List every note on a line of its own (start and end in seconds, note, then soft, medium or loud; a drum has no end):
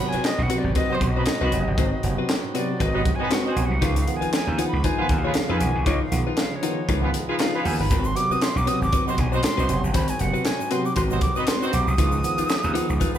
0.00 0.15 C3 medium
0.00 0.15 F#3 medium
0.00 3.78 F#3 medium
0.00 0.16 B3 medium
0.00 11.95 B3 medium
0.00 3.78 C4 medium
0.00 11.94 D#4 medium
0.00 0.10 B5 loud
0.00 muted clean electric guitar stroke medium
0.09 0.27 G#5 loud
0.13 0.27 C4 soft
0.13 0.26 F#4 medium
0.13 0.26 B4 medium
0.13 muted slap bass stroke soft
0.13 closed hi-hat soft
0.24 0.44 D#5 medium
0.24 snare medium
0.24 clap medium
0.24 closed hi-hat medium
0.38 0.48 B1 medium
0.38 0.53 G#2 medium
0.38 muted clean electric guitar stroke soft
0.43 0.60 F#5 loud
0.49 0.67 C3 medium
0.49 0.67 F#3 medium
0.49 0.67 B3 medium
0.49 0.68 C4 medium
0.49 0.64 F#4 medium
0.49 0.63 B4 medium
0.49 closed hi-hat medium
0.58 0.76 D5 loud
0.64 0.74 G#1 medium
0.64 muted clean electric guitar stroke soft
0.75 0.94 C4 medium
0.75 0.94 F#4 medium
0.75 0.95 B4 medium
0.75 0.96 D#5 loud
0.75 kick loud
0.75 closed hi-hat medium
0.89 1.04 C3 medium
0.89 1.04 F#3 medium
0.89 1.04 B3 medium
0.89 0.98 C4 medium
0.89 0.98 D#4 medium
0.89 0.98 F#4 medium
0.89 0.98 C5 loud
0.95 1.12 C5 medium
1.01 1.23 B1 medium
1.01 muted clean electric guitar stroke soft
1.01 kick loud
1.01 closed hi-hat medium
1.11 2.38 D#5 medium
1.15 1.25 G#2 medium
1.15 1.23 B3 medium
1.15 1.27 C4 soft
1.15 1.23 D#4 loud
1.15 1.23 F#4 medium
1.15 1.27 F#4 soft
1.15 1.23 B4 loud
1.15 1.28 C5 soft
1.26 1.44 G#2 medium
1.26 snare loud
1.26 clap medium
1.26 closed hi-hat medium
1.41 1.51 C2 medium
1.41 1.57 B3 medium
1.41 1.52 C4 medium
1.41 1.58 D#4 medium
1.41 1.58 F#4 medium
1.41 1.52 F#4 medium
1.41 1.57 B4 medium
1.41 1.53 B4 medium
1.52 1.65 F#1 medium
1.52 1.69 C3 medium
1.52 1.65 F#3 medium
1.52 1.65 B3 medium
1.52 muted clean electric guitar stroke soft
1.52 closed hi-hat medium
1.66 1.77 G1 medium
1.66 1.71 F#3 soft
1.66 1.71 B3 soft
1.66 muted clean electric guitar stroke soft
1.77 1.90 G#1 loud
1.77 1.94 G#2 medium
1.77 1.96 C4 medium
1.77 1.92 F#4 medium
1.77 1.92 C5 medium
1.77 kick loud
1.77 closed hi-hat medium
1.92 1.96 F#3 soft
1.92 1.97 B3 soft
1.92 muted clean electric guitar stroke medium
2.03 2.15 F#1 medium
2.03 2.20 C3 medium
2.03 2.20 F#3 medium
2.03 2.21 B3 medium
2.03 muted clean electric guitar stroke soft
2.03 closed hi-hat medium
2.18 2.31 C4 medium
2.18 2.30 F#4 medium
2.18 2.30 B4 medium
2.29 2.35 F#3 soft
2.29 2.35 B3 soft
2.29 snare loud
2.29 clap medium
2.29 closed hi-hat medium
2.44 2.58 G#2 soft
2.44 muted clean electric guitar stroke soft
2.54 2.71 C3 medium
2.54 2.71 F#3 medium
2.54 2.71 B3 medium
2.54 2.73 C4 medium
2.54 2.69 F#4 medium
2.54 2.69 B4 medium
2.54 2.83 D5 medium
2.54 closed hi-hat medium
2.70 muted clean electric guitar stroke soft
2.80 3.02 G#1 medium
2.80 2.98 C4 medium
2.80 2.98 F#4 medium
2.80 2.99 B4 loud
2.80 3.17 D#5 loud
2.80 kick medium
2.80 closed hi-hat medium
2.93 3.09 C3 medium
2.93 3.09 F#3 medium
2.93 3.01 B3 medium
2.93 3.09 B3 medium
2.93 3.01 D#4 medium
2.93 3.01 F#4 medium
2.93 3.01 B4 medium
3.05 muted clean electric guitar stroke soft
3.05 kick loud
3.05 closed hi-hat medium
3.15 3.30 B4 medium
3.15 3.33 G#5 medium
3.20 3.30 G#2 medium
3.20 3.28 B3 medium
3.20 3.29 C4 soft
3.20 3.27 D#4 loud
3.20 3.30 F#4 soft
3.20 3.27 F#4 medium
3.20 3.28 B4 loud
3.30 3.48 G#2 medium
3.30 3.54 C4 medium
3.30 3.55 F#4 loud
3.30 3.55 B4 loud
3.30 3.48 F#5 medium
3.30 snare loud
3.30 clap medium
3.30 closed hi-hat medium
3.46 3.62 C4 medium
3.46 3.62 D#4 medium
3.46 3.62 F#4 medium
3.46 3.62 C5 medium
3.50 3.67 G#5 medium
3.56 3.68 B1 medium
3.56 3.73 C3 medium
3.56 3.70 F#3 medium
3.56 3.70 B3 medium
3.56 closed hi-hat medium
3.66 3.85 F#5 loud
3.70 3.80 C2 medium
3.70 3.76 F#3 soft
3.70 3.75 B3 soft
3.70 muted clean electric guitar stroke soft
3.81 4.04 C#2 loud
3.81 3.99 C#3 medium
3.81 7.86 F3 medium
3.81 7.86 G#3 medium
3.81 4.00 D#4 medium
3.81 3.96 F4 medium
3.81 3.95 B4 loud
3.81 3.99 F5 medium
3.81 kick loud
3.81 closed hi-hat loud
3.96 4.01 F3 soft
3.96 4.01 B3 soft
3.96 4.18 F5 medium
3.96 muted clean electric guitar stroke soft
3.96 closed hi-hat medium
4.07 4.24 D#3 medium
4.07 4.24 F3 medium
4.07 4.25 B3 medium
4.07 muted clean electric guitar stroke soft
4.07 closed hi-hat medium
4.16 4.33 G#5 medium
4.21 4.34 D#4 medium
4.21 4.34 F4 medium
4.21 4.34 B4 medium
4.21 muted slap bass stroke soft
4.21 closed hi-hat soft
4.33 4.39 F3 soft
4.33 4.39 B3 soft
4.33 4.65 G#5 medium
4.33 snare loud
4.33 clap medium
4.33 closed hi-hat medium
4.47 4.57 D#2 medium
4.47 4.62 C#3 soft
4.47 muted clean electric guitar stroke soft
4.58 4.75 D#3 medium
4.58 4.75 F3 medium
4.58 4.75 B3 medium
4.58 4.77 D#4 medium
4.58 4.73 F4 medium
4.58 4.72 B4 medium
4.58 closed hi-hat medium
4.68 4.86 B5 medium
4.73 4.82 C#2 medium
4.73 muted clean electric guitar stroke soft
4.84 5.03 D#4 loud
4.84 5.03 F4 loud
4.84 5.03 B4 loud
4.84 5.20 G#5 loud
4.84 kick medium
4.84 closed hi-hat medium
4.98 5.13 D#3 medium
4.98 5.13 F3 medium
4.98 5.13 B3 medium
4.98 5.06 B3 medium
4.98 5.06 F4 medium
4.98 5.06 G#4 medium
4.98 5.06 B4 loud
5.09 5.31 D#2 medium
5.09 kick loud
5.09 closed hi-hat medium
5.19 5.55 F5 medium
5.24 5.34 C#3 medium
5.24 5.31 B3 medium
5.24 5.34 D#4 soft
5.24 5.32 F4 medium
5.24 5.35 F4 medium
5.24 5.32 G#4 loud
5.24 5.31 B4 loud
5.24 5.36 C#5 medium
5.34 5.52 C#3 medium
5.34 snare loud
5.34 clap medium
5.34 closed hi-hat loud
5.49 5.59 F2 medium
5.49 5.65 B3 medium
5.49 5.60 D#4 medium
5.49 5.66 F4 medium
5.49 5.60 F4 medium
5.49 5.66 G#4 medium
5.49 5.65 B4 medium
5.49 5.61 B4 medium
5.49 5.87 G#5 medium
5.60 5.73 B1 medium
5.60 5.78 D#3 medium
5.60 5.74 F3 medium
5.60 5.74 B3 medium
5.60 muted clean electric guitar stroke soft
5.60 closed hi-hat medium
5.75 5.86 C2 medium
5.75 5.79 F3 soft
5.75 5.79 B3 soft
5.75 muted clean electric guitar stroke soft
5.86 5.98 C#2 loud
5.86 6.03 C#3 medium
5.86 6.05 D#4 medium
5.86 6.01 F4 medium
5.86 6.01 C#5 medium
5.86 6.03 D#5 medium
5.86 kick loud
5.86 closed hi-hat loud
6.01 6.05 F3 soft
6.01 6.05 B3 soft
6.01 muted clean electric guitar stroke soft
6.05 6.20 F5 medium
6.11 6.24 B1 medium
6.11 6.28 D#3 medium
6.11 6.28 F3 medium
6.11 6.29 B3 medium
6.11 muted clean electric guitar stroke soft
6.11 closed hi-hat medium
6.27 6.39 D#4 soft
6.27 6.39 F4 medium
6.27 6.39 B4 medium
6.37 6.43 F3 soft
6.37 6.43 B3 soft
6.37 6.57 F5 medium
6.37 snare loud
6.37 clap medium
6.37 closed hi-hat medium
6.51 6.66 C#3 medium
6.51 muted clean electric guitar stroke soft
6.56 7.06 C#5 medium
6.62 6.79 D#3 medium
6.62 6.79 F3 medium
6.62 6.79 B3 medium
6.62 6.81 D#4 medium
6.62 6.77 F4 medium
6.62 6.76 B4 medium
6.62 closed hi-hat medium
6.77 muted clean electric guitar stroke medium
6.88 7.10 C#2 medium
6.88 7.07 D#4 medium
6.88 7.07 F4 loud
6.88 7.07 B4 loud
6.88 kick loud
6.88 closed hi-hat medium
7.01 7.16 D#3 medium
7.01 7.16 F3 medium
7.01 7.17 B3 medium
7.01 7.10 B3 medium
7.01 7.10 F4 medium
7.01 7.10 G#4 medium
7.01 7.10 B4 medium
7.14 muted clean electric guitar stroke soft
7.14 closed hi-hat medium
7.28 7.38 C#3 medium
7.28 7.36 B3 loud
7.28 7.39 D#4 soft
7.28 7.36 F4 medium
7.28 7.40 F4 soft
7.28 7.35 G#4 medium
7.28 7.40 B4 medium
7.28 7.36 B4 loud
7.39 7.56 C#3 medium
7.39 7.58 D#4 medium
7.39 7.58 F4 loud
7.39 7.58 B4 loud
7.39 7.68 F5 medium
7.39 snare loud
7.39 clap medium
7.39 closed hi-hat medium
7.54 7.70 B3 loud
7.54 7.71 F4 medium
7.54 7.70 G#4 medium
7.54 7.70 B4 loud
7.64 7.77 D#2 medium
7.64 7.81 D#3 medium
7.64 7.78 F3 medium
7.64 7.78 B3 medium
7.64 7.79 G#5 medium
7.64 muted clean electric guitar stroke soft
7.64 open hi-hat medium
7.79 7.91 G1 medium
7.79 7.83 F3 soft
7.79 7.83 B3 soft
7.79 7.91 D#4 soft
7.79 7.92 F4 soft
7.79 7.91 B4 medium
7.79 8.07 B5 loud
7.89 8.12 G#1 loud
7.89 8.07 G#2 medium
7.89 11.95 F#3 medium
7.89 8.12 C4 medium
7.89 11.95 C4 medium
7.89 8.05 F#4 medium
7.89 8.05 B4 medium
7.89 kick loud
7.89 closed hi-hat loud
7.89 shaker medium
8.04 8.09 F#3 soft
8.04 8.09 B3 soft
8.04 8.18 C6 medium
8.04 muted clean electric guitar stroke soft
8.04 shaker medium
8.15 8.32 C3 medium
8.15 8.32 F#3 medium
8.15 8.32 B3 medium
8.15 8.33 D6 loud
8.15 muted clean electric guitar stroke soft
8.15 closed hi-hat medium
8.15 shaker medium
8.30 8.44 C4 soft
8.30 8.43 F#4 medium
8.30 8.43 B4 medium
8.30 8.44 D#6 loud
8.30 muted slap bass stroke soft
8.30 shaker soft
8.41 8.59 C6 loud
8.41 snare medium
8.41 clap medium
8.41 closed hi-hat medium
8.41 shaker medium
8.55 8.65 B1 medium
8.55 8.70 G#2 medium
8.55 8.69 D6 loud
8.55 muted clean electric guitar stroke medium
8.55 shaker medium
8.66 8.83 C3 medium
8.66 8.83 F#3 medium
8.66 8.83 B3 medium
8.66 8.85 C4 medium
8.66 8.81 F#4 medium
8.66 8.80 B4 medium
8.66 8.82 D#6 loud
8.66 closed hi-hat medium
8.81 8.91 G#1 medium
8.81 9.06 D6 loud
8.81 muted clean electric guitar stroke soft
8.81 shaker medium
8.93 9.11 C4 medium
8.93 9.11 F#4 medium
8.93 9.11 B4 loud
8.93 kick loud
8.93 closed hi-hat medium
8.93 shaker medium
9.06 9.21 C3 medium
9.06 9.21 F#3 medium
9.06 9.21 B3 medium
9.06 9.15 C4 medium
9.06 9.14 D#4 medium
9.06 9.15 F#4 medium
9.06 9.15 C5 medium
9.06 9.22 C6 medium
9.06 shaker medium
9.18 9.40 B1 medium
9.18 9.34 G#5 medium
9.18 kick loud
9.18 closed hi-hat medium
9.32 9.42 G#2 medium
9.32 9.40 C4 medium
9.32 9.42 C4 soft
9.32 9.40 D#4 medium
9.32 9.40 F#4 medium
9.32 9.42 F#4 soft
9.32 9.44 C5 medium
9.32 9.40 C5 loud
9.32 9.83 C6 loud
9.32 shaker medium
9.43 9.60 G#2 medium
9.43 snare loud
9.43 clap medium
9.43 closed hi-hat medium
9.43 shaker medium
9.57 9.67 C2 medium
9.57 9.67 C4 medium
9.57 9.75 C4 medium
9.57 9.74 D#4 medium
9.57 9.68 F#4 medium
9.57 9.74 F#4 medium
9.57 9.68 B4 medium
9.57 9.75 C5 medium
9.57 shaker medium
9.69 9.81 F#1 medium
9.69 9.86 C3 medium
9.69 9.82 F#3 medium
9.69 9.82 B3 medium
9.69 closed hi-hat medium
9.69 shaker medium
9.82 9.93 G1 medium
9.82 9.88 F#3 soft
9.82 9.88 B3 soft
9.82 muted clean electric guitar stroke soft
9.82 shaker medium
9.94 10.07 G#1 loud
9.94 10.11 G#2 medium
9.94 10.12 C4 medium
9.94 10.08 F#4 medium
9.94 10.08 C5 loud
9.94 10.11 B5 loud
9.94 kick loud
9.94 closed hi-hat loud
9.94 shaker medium
10.08 10.13 F#3 soft
10.08 10.13 B3 soft
10.08 10.22 G#5 medium
10.08 muted clean electric guitar stroke soft
10.08 closed hi-hat medium
10.08 shaker medium
10.19 10.32 F#1 medium
10.19 10.37 C3 medium
10.19 10.37 F#3 medium
10.19 10.37 B3 medium
10.19 10.48 F#5 loud
10.19 muted clean electric guitar stroke medium
10.19 closed hi-hat medium
10.19 shaker medium
10.33 10.47 C4 medium
10.33 10.46 F#4 medium
10.33 10.46 B4 medium
10.33 shaker soft
10.45 10.51 F#3 soft
10.45 10.51 B3 soft
10.45 10.73 G#5 medium
10.45 snare medium
10.45 clap medium
10.45 closed hi-hat medium
10.45 shaker medium
10.59 10.74 G#2 medium
10.59 muted clean electric guitar stroke soft
10.59 shaker medium
10.71 10.88 C3 medium
10.71 10.88 F#3 medium
10.71 10.88 B3 medium
10.71 10.89 C4 medium
10.71 10.85 F#4 medium
10.71 10.84 B4 medium
10.71 10.87 C6 loud
10.71 closed hi-hat medium
10.85 10.96 D6 loud
10.85 muted clean electric guitar stroke soft
10.85 shaker medium
10.96 11.18 G#1 medium
10.96 11.15 C4 loud
10.96 11.15 F#4 loud
10.96 11.15 B4 loud
10.96 11.02 C6 loud
10.96 kick medium
10.96 closed hi-hat medium
10.96 shaker medium
11.11 11.25 C3 medium
11.11 11.25 F#3 medium
11.11 11.25 B3 medium
11.11 11.19 C4 medium
11.11 11.18 D#4 medium
11.11 11.18 F#4 medium
11.11 11.19 C5 loud
11.11 shaker medium
11.21 11.38 D6 medium
11.21 kick loud
11.21 closed hi-hat medium
11.36 11.47 G#2 soft
11.36 11.44 B3 medium
11.36 11.46 C4 soft
11.36 11.45 D#4 loud
11.36 11.44 F#4 medium
11.36 11.46 F#4 medium
11.36 11.47 B4 medium
11.36 11.44 B4 loud
11.36 11.49 D#6 medium
11.36 shaker medium
11.47 11.64 G#2 medium
11.47 11.71 C4 medium
11.47 11.71 F#4 medium
11.47 11.72 B4 loud
11.47 11.72 C6 loud
11.47 snare loud
11.47 clap medium
11.47 closed hi-hat loud
11.47 shaker medium
11.62 11.78 C4 loud
11.62 11.78 D#4 medium
11.62 11.78 F#4 loud
11.62 11.78 C5 loud
11.62 shaker medium
11.72 11.85 B1 medium
11.72 11.90 C3 medium
11.72 11.86 F#3 medium
11.72 11.86 B3 medium
11.72 11.90 D6 medium
11.72 closed hi-hat medium
11.72 shaker soft
11.87 11.97 C2 medium
11.87 11.92 F#3 soft
11.87 11.92 B3 soft
11.87 13.15 D#6 loud
11.87 muted clean electric guitar stroke soft
11.87 shaker medium
11.98 12.20 C#2 loud
11.98 12.15 C#3 medium
11.98 13.18 F3 medium
11.98 13.18 G#3 medium
11.98 13.18 B3 medium
11.98 12.17 D#4 medium
11.98 13.18 D#4 medium
11.98 12.12 F4 medium
11.98 12.11 B4 medium
11.98 kick loud
11.98 closed hi-hat loud
11.98 shaker medium
12.12 12.18 F3 soft
12.12 12.17 B3 soft
12.12 muted clean electric guitar stroke soft
12.12 shaker medium
12.23 12.41 D#3 medium
12.23 12.41 F3 medium
12.23 12.41 B3 medium
12.23 muted clean electric guitar stroke soft
12.23 closed hi-hat medium
12.23 shaker medium
12.38 12.51 D#4 medium
12.38 12.51 F4 medium
12.38 12.50 B4 medium
12.38 muted slap bass stroke soft
12.38 closed hi-hat soft
12.38 shaker soft
12.48 12.55 F3 soft
12.48 12.55 B3 soft
12.48 snare medium
12.48 clap medium
12.48 closed hi-hat medium
12.48 shaker medium
12.64 12.74 D#2 medium
12.64 12.78 C#3 medium
12.64 muted clean electric guitar stroke soft
12.64 shaker medium
12.74 12.92 D#3 medium
12.74 12.92 F3 medium
12.74 12.92 B3 medium
12.74 12.93 D#4 medium
12.74 12.88 F4 medium
12.74 12.88 B4 medium
12.74 closed hi-hat medium
12.89 12.99 C#2 medium
12.89 muted clean electric guitar stroke soft
12.89 shaker medium
13.00 13.18 D#4 medium
13.00 13.18 F4 medium
13.00 13.18 B4 loud
13.00 kick medium
13.00 closed hi-hat medium
13.00 shaker medium
13.15 13.18 D#3 medium
13.15 13.18 F3 medium
13.15 13.18 B3 medium
13.15 shaker medium